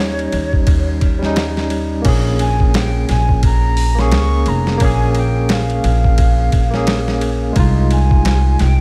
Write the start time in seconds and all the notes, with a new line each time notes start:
Already playing: D#2 G3 C#4 D#4 C#5
0.19 ride
0.32 D#2, ride
0.53 kick
0.67 D#2, kick, ride
1.01 kick, ride
1.19 G3 C#4, snare
1.25 D#4
1.36 snare, ride
1.57 snare
1.70 ride
2.02 A#1 A#3 C#4, kick, crash, ride
2.08 G#4
2.39 G#5, ride
2.60 kick
2.74 G5, snare, ride
3.09 A#1 G#5, snare, ride
3.29 kick
3.43 A#5, kick, ride
3.77 open hi-hat
3.95 A#3 C#4, snare
3.99 G#4 C#6
4.12 C#2, snare, ride
4.46 F1 A#5, ride
4.67 snare
4.78 A#1 A#3 C#4, kick, ride
4.82 G#4 G#5
5.15 G5, ride
5.49 F5, snare, ride
5.70 ride
5.84 A#1, ride
6.04 kick
6.18 kick, ride
6.52 A#1, kick, ride
6.71 A#3 C#4, snare
6.77 G#4
6.87 snare, ride
7.08 snare
7.21 ride
7.53 C2 G#3 D#4, kick, ride
7.59 F4
7.91 G#5, ride
8.11 kick
8.25 snare, ride
8.59 C2 G5, snare, ride